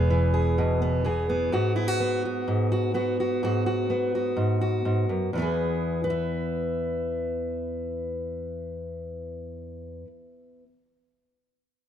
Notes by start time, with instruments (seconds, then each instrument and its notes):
Already playing: picked electric bass E1, steel-string acoustic guitar E2 B3 G#4
0.10 steel-string acoustic guitar E3
0.34 steel-string acoustic guitar G#4
0.58 steel-string acoustic guitar B2
0.82 steel-string acoustic guitar B3
1.04 steel-string acoustic guitar E3 G#4
1.29 steel-string acoustic guitar B3
1.52 steel-string acoustic guitar G#2 F#4
1.76 steel-string acoustic guitar E4
1.88 steel-string acoustic guitar F#4
2.00 steel-string acoustic guitar B3
2.25 steel-string acoustic guitar F#4
2.48 steel-string acoustic guitar G#2
2.72 steel-string acoustic guitar F#4
2.94 steel-string acoustic guitar B3 F#4
3.20 steel-string acoustic guitar F#4
3.43 steel-string acoustic guitar G#2 F#4
3.66 steel-string acoustic guitar F#4
3.90 steel-string acoustic guitar B3
4.15 steel-string acoustic guitar F#4
4.37 steel-string acoustic guitar G#2
4.61 steel-string acoustic guitar F#4
4.85 steel-string acoustic guitar G#2
5.09 steel-string acoustic guitar F#2
5.33 steel-string acoustic guitar E2 E3
5.38 steel-string acoustic guitar B3 E4
5.42 steel-string acoustic guitar G#4
6.04 steel-string acoustic guitar B4
6.10 steel-string acoustic guitar E5